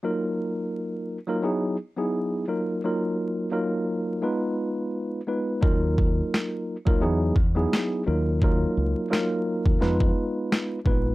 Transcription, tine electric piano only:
X:1
M:4/4
L:1/16
Q:"Swing 16ths" 1/4=86
K:Ebm
V:1 name="Tine electric piano"
[G,B,EFB]6 z [G,B,EFB] [^F,=B,^D=E^G]2 z [F,B,DEG]3 [_G,_B,_E=FB]2 | [G,B,EFB]4 [G,B,EFB]4 [A,CEFc]6 [A,CEFc]2 | [G,B,EFB]6 z [G,B,EFB] [^F,=B,^D=E^G]2 z [F,B,DEG]3 [_G,_B,_E=FB]2 | [G,B,EFB]4 [G,B,EFB]4 [A,CEFc]6 [A,CEFc]2 |]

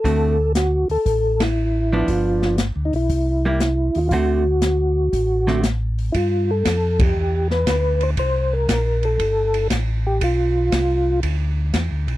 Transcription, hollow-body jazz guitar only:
X:1
M:4/4
L:1/8
Q:"Swing" 1/4=118
K:Gmix
V:1 name="Hollow-body jazz guitar"
[D,A,C^F] z6 [=F,B,D]- | [F,B,D]2 z3 [G,_B,E] z2 | [D,A,C^F] z4 [D,A,CF] z2 | z8 |
z8 | z8 |]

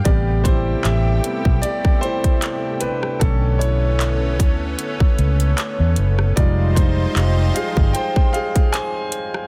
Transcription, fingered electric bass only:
X:1
M:4/4
L:1/16
Q:"Swing 16ths" 1/4=76
K:Bphr
V:1 name="Fingered electric bass" clef=bass
A,,,4 A,,,2 z B,,, z8 | B,,,6 D,,2 z2 ^C,,2 z E,, F,,,2 | =F,,,4 F,,,2 z G,,, z8 |]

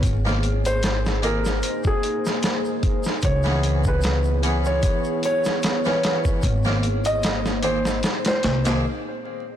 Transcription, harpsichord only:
X:1
M:4/4
L:1/16
Q:"Swing 16ths" 1/4=75
K:G#m
V:1 name="Harpsichord"
z [D,A,^B,A] z4 [D,A,B,G] z8 z | z [E,B,CG]4- [E,B,CG] [E,B,CG]6- [E,B,CG] [E,B,CA]3 | z [D,A,^B,A] z4 [D,A,B,G] z4 [D,A,B,G] z4 |]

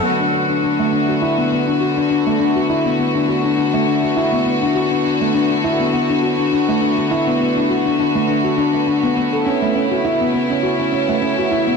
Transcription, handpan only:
X:1
M:4/4
L:1/16
Q:"Swing 16ths" 1/4=102
K:Bm
V:1 name="Handpan"
B, D F D D A, D F E B, B, D F D D A, | D F E B, B, D F D D A, D F E B, B, D | F D D A, D F E B, B, D F D D A, D F | E B, B, D F D D A, D F D A, D B, B, A |
C A, C F E B, B, C F C C A, C F E B, |]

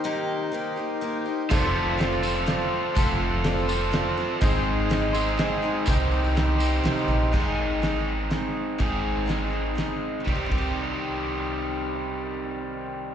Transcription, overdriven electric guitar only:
X:1
M:3/4
L:1/8
Q:1/4=124
K:Cm
V:1 name="Overdriven electric guitar"
z6 | [F,CF=Ac]3 [F,CFAc]3 | [F,CF=Ac]3 [F,CFAc]3 | [A,CEAc]3 [A,CEAc]3 |
[C,G,CEGc]3 [C,G,CEGc]3 | [A,CEA]6 | [A,CEA]6 | [C,E,G,CG] [C,E,G,CG]4- [C,E,G,CG]- |
[C,E,G,CG]6 |]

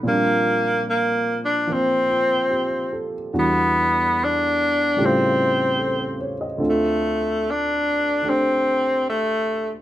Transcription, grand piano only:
X:1
M:4/4
L:1/16
Q:"Swing" 1/4=73
K:Bb
V:1 name="Grand piano"
z8 z2 F2 G2 A2- | A z8 z3 A ^B ^c e | z16 |]
V:2 name="Grand piano"
[B,,F,G,CD]8 [F,B,C]8 | [=E,,=E,G,D^F]8 [A,,^C,G,A,^EG]8 | [D,,D,CFA]8 [D,A,DG]8 |]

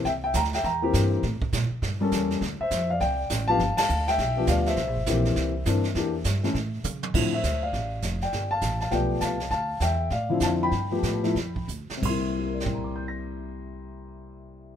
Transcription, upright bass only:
X:1
M:4/4
L:1/8
Q:"Swing" 1/4=203
K:Cmix
V:1 name="Upright bass" clef=bass
C,,2 D,,2 E,,2 G,,2 | A,, z B,, z G,,2 E,,2 | D,, z F,,2 C,,2 A,,,2 | G,,, z D,,2 =B,,,2 D,,2 |
(3C,, B,,, G,,, B,,,2 C,,2 G,,2 | E,,2 G,,2 A,,2 ^C,2 | A,,2 D,,2 A,,,2 F,,,2 | G,,,2 A,,,2 =B,,,2 C,,2 |
D,,2 E,,2 A,,2 F,,2 | G,,2 A,,2 F,,2 D,, z | C,,8- | C,,8 |]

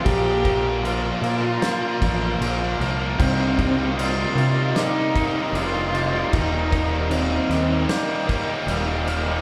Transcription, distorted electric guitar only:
X:1
M:4/4
L:1/16
Q:1/4=76
K:Cm
V:1 name="Distorted electric guitar"
[B,,F,B,FB] [B,FB] [F,B,FB] [B,FB] [B,,F,B,FB]2 [F,B,FB]3 [B,FB] [F,B,FB] [B,FB] [B,,F,B,FB]2 [F,B,FB] [B,FB] | [C,,G,,C,G,B,E] [C,G,B,E] [C,G,B,E] [C,G,B,E] [C,,G,,C,G,B,E]2 [C,G,B,E]3 [C,G,B,E] [C,G,B,E] [C,G,B,E] [C,,G,,C,G,B,E]2 [C,G,B,E] [C,G,B,E] | [E,,B,,E,G,B,E] [E,G,B,E] [E,G,B,E] [E,G,B,E] [E,,B,,E,G,B,E]2 [E,G,B,E]3 [E,G,B,E] [E,G,B,E] [E,G,B,E] [E,,B,,E,G,B,E]2 [E,G,B,E] [E,G,B,E] |]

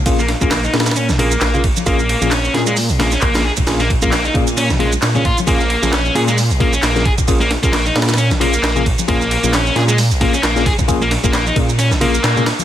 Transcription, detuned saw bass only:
X:1
M:4/4
L:1/16
Q:"Swing 16ths" 1/4=133
K:Bbm
V:1 name="Detuned saw bass" clef=bass
B,,,2 z B,,,2 z B,,3 B,,,2 z B,,,2 z2 | B,,,2 z B,,,2 z B,,3 B,,,2 z B,,,2 z2 | B,,,2 z B,,,2 z B,,3 B,,,2 z B,,2 z2 | B,,,2 z B,,,2 z B,,3 B,,,2 z B,,,2 z2 |
B,,,2 z B,,,2 z B,,3 B,,,2 z B,,,2 z2 | B,,,2 z B,,,2 z B,,3 B,,,2 z B,,,2 z2 | B,,,2 z B,,,2 z B,,3 B,,,2 z B,,2 z2 |]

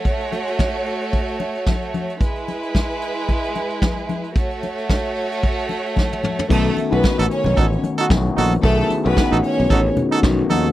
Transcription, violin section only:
X:1
M:4/4
L:1/16
Q:"Swing 16ths" 1/4=112
K:Bmix
V:1 name="Violin section"
[A,Fc]16 | [G,EB]16 | [A,Fc]16 | [A,A]2 z [B,B]3 [Cc]4 z6 |
[A,A]2 z [B,B]3 [Cc]4 z6 |]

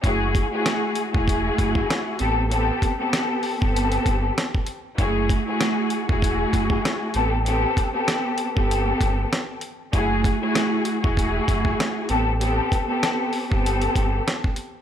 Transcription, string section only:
X:1
M:4/4
L:1/16
Q:"Swing 16ths" 1/4=97
K:A
V:1 name="String section"
[A,EFG]3 [A,EFG]4 [A,EFG]6- [A,EFG] [B,=C=GA] z | [B,=C=GA]3 [B,CGA]4 [B,CGA]6 z3 | [A,EFG]3 [A,EFG]4 [A,EFG]6- [A,EFG] [B,=C=GA] z | [B,=C=GA]3 [B,CGA]4 [B,CGA]6 z3 |
[A,EFG]3 [A,EFG]4 [A,EFG]6- [A,EFG] [B,=C=GA] z | [B,=C=GA]3 [B,CGA]4 [B,CGA]6 z3 |]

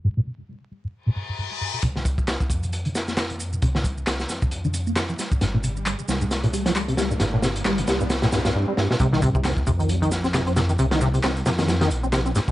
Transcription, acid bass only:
X:1
M:4/4
L:1/16
Q:"Swing 16ths" 1/4=134
K:Cm
V:1 name="Acid bass" clef=bass
G,, =A,, C, z G, G,, G, G,, z A,, G,, G,, G,, G, G,, =B,, | C, D, z4 C C, z D, z B, C F, C C, | C, D, F, z C C, C C, z D, C B, C F, G, G,, | G,, =A,, C, z G, G,, G, G,, z A,, G, F, G, C, G, G,, |
G,, =A,, C, z G, G,, G, G,, z A,, G,, G,, G,, G, G,, =B,, | C, E, C, C, C z C, E, G, E, z C C, C C, E, | C, E, C, C, C z C, E, G, E, z C C, C G,, =B,, |]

